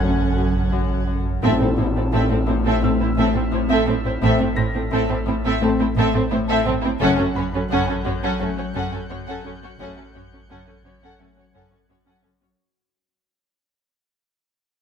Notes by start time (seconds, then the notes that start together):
Already playing: F#1 A1 F#2 F#3 C#4 A4 F#5 F#6 G#6
0.02 F#2 A3 C#4
0.38 F#2
0.72 F#2
1.07 F#2
1.43 A1 A2 A3 C4 A4 E5 E6, tam-tam
1.60 A2 C4 A4
1.77 A1 A2 C4 E4 C5
1.95 A2 C4 A4
2.12 A1 A2 C4 A4 E5 F6
2.29 A2 C4 A4
2.47 A1 A2 C4 E4 C5
2.64 A2 C4 A4 E5
2.81 A1 A2 A3 C4 A4 E6 B6
2.99 A2 C4 E4 C5
3.16 A1 A2 C4 A4 E5
3.33 A2 C4 A4
3.51 A1 A2 C4 E4 C5
3.68 A2 C4 A4 E5
3.86 A1 A2 C4 A4
4.04 A2 C4 E4 C5
4.21 A1 A2 A3 C4 A4 E5
4.39 A2 C4 A4
4.56 A1 A2 C4 E4 A4 C5 A#6
4.73 A2 C4 A4
4.91 A1 A2 C4 A4 E5
5.08 A2 C4 A4
5.26 A1 A2 C4 E4 C5
5.44 A2 C4 A4 E5
5.51 E6
5.61 A1 A2 A3 C4 A4
5.79 A2 C4 E4 C5
5.96 A1 A2 C4 A4 E5
6.13 A2 C4 A4
6.30 A1 A2 C4 E4 C5
6.48 A2 C4 A4 E5
6.65 A1 A2 C4 A4
6.81 A2 C4 E4 C5
6.99 F#1 A1 F#2 A3 C#4 A4 F#5 F#6
7.17 F#2 C#4 A4
7.35 F#1 F#2 C#4 F#4 C#5 B5
7.52 F#2 C#4 A4
7.70 F#1 F#2 C#4 A4 F#5 G6
7.87 F#2 C#4 A4
8.03 F#1 F#2 C#4 F#4 C#5
8.22 F#2 C#4 A4 F#5
8.40 F#1 F#2 F#3 A3 C#4 A4 C#7
8.57 F#2 C#4 F#4 C#5
8.74 F#1 F#2 C#4 A4 F#5
8.91 F#2 C#4 A4
9.08 F#1 F#2 C#4 F#4 C#5
9.26 F#2 C#4 A4 F#5
9.44 F#1 F#2 C#4 A4
9.61 F#2 C#4 F#4 C#5
9.78 F#1 A1 F#2 A3 C#4 A4 F#5
9.96 F#2 C#4 A4
10.14 F#1 F#2 C#4 F#4 C#5
10.32 F#2 C#4 A4
10.48 F#1 F#2 C#4 A4 F#5
10.66 F#2 C#4 A4
10.83 F#1 F#2 C#4 F#4 C#5
11.01 F#2 C#4 A4 F#5
11.09 G#6
11.18 F#1 F#2 F#3 A3 C#4 A4
11.36 F#2 C#4 F#4 C#5
11.53 F#1 F#2 C#4 A4 F#5
11.70 F#2 C#4 A4
11.88 F#1 F#2 C#4 F#4 C#5
12.05 F#2 C#4 A4 F#5
12.23 F#1 F#2 C#4 A4
12.40 F#2 C#4 F#4 C#5